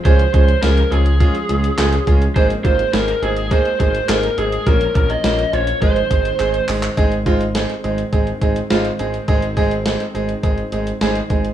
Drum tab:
HH |xxxxxxxxxxxxxxxx|xxxxxxxxxxxxxxxx|xxxxxxxxxxxxxxox|xxxxxxxxxxxxxxxx|
CP |------------x---|------------x---|------------x-xx|----------------|
SD |----o-------o---|----o-------o---|----o-----------|----o-------o---|
BD |o-o-----o-----o-|o-o-----o-o-----|o-o-----o-o-----|o-o-----o-o-----|

HH |xxxxxxxxxxxxxxxx|
CP |----------------|
SD |----o-------o---|
BD |o-o-----o-----o-|